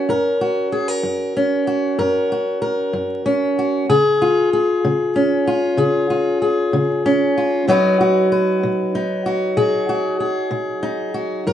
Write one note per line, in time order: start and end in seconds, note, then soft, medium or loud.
0.00 1.36 C#4 medium
0.09 0.66 F#2 medium
0.09 0.72 A#4 medium
0.41 1.66 F#4 medium
0.72 0.88 G#4 medium
0.88 1.97 A#4 medium
1.03 1.61 F#2 medium
1.37 3.24 C#4 medium
1.67 2.30 F#4 medium
1.99 2.56 F#2 medium
1.99 2.60 A#4 medium
2.32 3.58 F#4 medium
2.62 3.84 A#4 medium
2.93 3.50 F#2 medium
3.26 3.85 C#4 medium
3.59 3.86 F#4 medium
3.89 4.46 C#3 medium
3.89 4.52 G#4 medium
4.22 5.46 F4 medium
4.53 5.77 G#4 medium
4.85 5.41 C#3 medium
5.16 7.05 C#4 medium
5.47 6.09 F4 medium
5.77 6.35 C#3 medium
5.77 6.41 G#4 medium
6.10 7.36 F4 medium
6.42 7.68 G#4 medium
6.73 7.30 C#3 medium
7.06 7.65 C#4 medium
7.38 7.65 F4 medium
7.68 8.25 B2 medium
7.68 11.53 F#3 medium
7.68 8.94 D#4 medium
7.68 8.00 F#4 medium
7.68 8.31 B4 medium
8.01 9.25 F#4 medium
8.32 9.57 B4 medium
8.63 9.20 B2 medium
8.95 10.81 D#4 medium
9.26 9.89 F#4 medium
9.57 10.14 B2 medium
9.57 10.19 G#4 medium
9.89 11.14 F#4 medium
10.20 11.47 G#4 medium
10.51 11.08 B2 medium
10.83 11.43 D#4 medium
11.14 11.53 F#4 medium
11.47 11.53 F#2 medium
11.47 11.53 A#4 medium